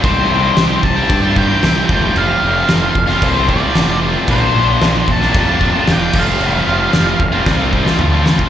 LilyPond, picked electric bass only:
\new Staff \with { instrumentName = "Picked electric bass" } { \clef bass \time 4/4 \key f \mixolydian \tempo 4 = 113 c,8 c,8 c,8 c,8 g,4 c,8 f,,8 | f,,8 f,,8 f,,8 f,,8 c,4 f,,4 | bes,,8 bes,,8 bes,,8 bes,,8 f,4 e,,8 f,,8 | f,,8 f,,8 f,,8 f,,8 c,4 d,4 | }